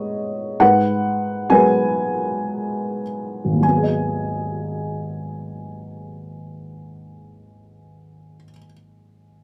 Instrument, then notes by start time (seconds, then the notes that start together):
felt piano
Already playing: G#2 G#3 B3 B4 C#5 D#5
0.60 G#2 B4 F#5
1.49 F#3 G#3 B3 B4 G#5
3.45 G#1
3.53 D#2
3.60 F#3 G#5
3.68 B3
3.75 G#4
3.83 D#5